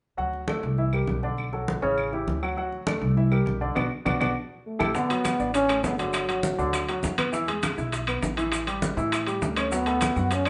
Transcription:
0.17 D2 F#3 F#4 F#5, high conga
0.33 high conga
0.48 A3 A4 D5, high conga, claves
0.63 C2, high conga
0.78 E3 E4 E5, high conga
0.93 G3 G4 A#4, high conga, claves
1.07 B1, high conga
1.23 D3 D4 D5, high conga
1.38 high conga, claves
1.53 F#3 F#4 A4, high conga
1.68 high conga
1.82 A1 C#3 C#4 C#5
1.98 high conga, claves
2.12 E3 E4 G4, high conga
2.27 D2, high conga
2.43 F#3 F#4 F#5, claves
2.57 F#3 F#4 F#5, high conga
2.72 high conga
2.86 A3 A4 D5, high conga, claves
3.01 C2, high conga
3.17 E3 E4 E5, high conga
3.31 G3 G4 A#4, high conga, claves
3.46 B1, high conga
3.61 D3 D4 D5, high conga
3.75 B1 B3 D4 F#4, high conga, claves
4.05 B1 B3 D4 F#4, high conga, claves
4.20 B1 B3 D4 F#4, high conga, claves
4.67 A3
4.79 A1 E4 G4 A4, high conga, claves
4.95 D3 B3 D4, high bongo, high conga, maracas
5.10 F#3 F#4, high conga, high timbale, maracas
5.24 high bongo, high conga, high timbale, claves, maracas
5.40 A1 D4 D5, high conga, maracas
5.54 C#4, high bongo, high conga, high timbale, maracas
5.69 A3 A4, high conga, high timbale, claves, maracas
5.84 G1 B3, high bongo, low bongo, high conga, low timbale, maracas
5.98 D3 F#3 D4, high conga, high timbale, maracas
6.13 high bongo, high conga, high timbale, claves, maracas
6.28 F#3 F#4, high conga, high timbale, maracas
6.43 high bongo, high conga, maracas
6.58 D2 D3 D4, high bongo, maracas
6.73 high bongo, high conga, high timbale, claves, maracas
6.88 F#3 F#4, high bongo, high conga, high timbale, maracas
7.03 E2, high bongo, low bongo, high conga, maracas
7.18 B3 B4, high bongo, high conga, high timbale, claves, maracas
7.33 E3 E4, high bongo, high conga, maracas
7.47 G#3 G#4, high conga, high timbale, maracas
7.63 high bongo, high conga, high timbale, claves, maracas
7.77 B1 E4 E5, high conga, maracas
7.92 high bongo, high conga, high timbale, maracas
8.07 B3 B4, high conga, high timbale, claves, maracas
8.23 A1, high bongo, low bongo, high conga, maracas
8.37 E3 E4, high conga, high timbale, maracas
8.52 high bongo, high conga, high timbale, claves, maracas
8.67 G3 G4, high conga, high timbale, maracas
8.82 high bongo, high conga, maracas
8.97 A2 E3 E4, high bongo, maracas
9.12 high bongo, high conga, high timbale, claves, maracas
9.26 G3 G4, high bongo, high conga, high timbale, maracas
9.42 D2 A3, high bongo, low bongo, high conga, maracas
9.56 C#4 C#5, high bongo, high timbale, claves, maracas
9.72 F#3 B3 F#4, high bongo, high conga, maracas
9.86 A3 A4, high conga, high timbale, maracas
10.01 high bongo, high conga, high timbale, claves, maracas
10.16 F#2 F#4 F#5, high conga, maracas
10.31 C#4, high bongo, high conga, high timbale, maracas
10.45 C#4 C#5, high conga, high timbale, claves, maracas

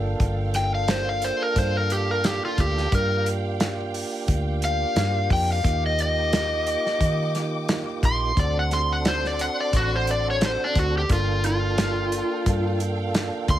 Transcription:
Already playing: G1 A#3 D4 F4 A4 F5 G5
0.20 G1, kick, closed hi-hat
0.54 G5, snare, closed hi-hat
0.75 F5
0.88 C5, snare, closed hi-hat
1.09 F5
1.22 C5, closed hi-hat
1.42 A#4
1.56 G2 C5, kick, closed hi-hat
1.77 A#4
1.90 G4, closed hi-hat
2.11 A#4
2.24 G4, snare, closed hi-hat
2.45 F4
2.58 D2 G4, kick, closed hi-hat
2.78 snare
2.91 G2 A#3 D4 F4 G4, kick, closed hi-hat
2.95 A#4
3.26 closed hi-hat
3.60 snare, closed hi-hat
3.94 open hi-hat
4.28 D2, kick, closed hi-hat
4.62 F5, closed hi-hat
4.96 G2, snare, closed hi-hat
5.30 F2 G5, kick, open hi-hat
5.53 F5
5.63 D#2 A#3 D#4 F4 G4 D#5 D6, kick, closed hi-hat
5.86 D#5
5.99 D#5, closed hi-hat
6.33 snare, closed hi-hat
6.67 closed hi-hat
6.86 snare
7.00 D#3, kick, closed hi-hat
7.35 snare, closed hi-hat
7.69 snare, closed hi-hat
8.03 A#1 C6, kick, closed hi-hat
8.35 D2 C4 D4 F#4 A4 D5 F#5 C6, kick, closed hi-hat
8.40 D5
8.59 F#5
8.71 C6, snare, closed hi-hat
8.92 F#5
9.05 C5, snare, closed hi-hat
9.25 D5, snare
9.39 F#5, closed hi-hat
9.60 D5
9.73 A1 F#4, kick, closed hi-hat
9.96 C5
10.07 D5, closed hi-hat
10.31 C#5
10.41 snare, closed hi-hat
10.45 C5
10.64 D4
10.75 D2 F#4, kick, closed hi-hat
10.98 G4
11.08 G1 A#3 D4 F4 A4 F5 G5, kick, closed hi-hat
11.13 F4
11.44 F4, closed hi-hat
11.78 snare, closed hi-hat
12.12 closed hi-hat
12.46 G2, kick, closed hi-hat
12.80 closed hi-hat
13.14 snare, closed hi-hat
13.48 D2 C6, kick, closed hi-hat

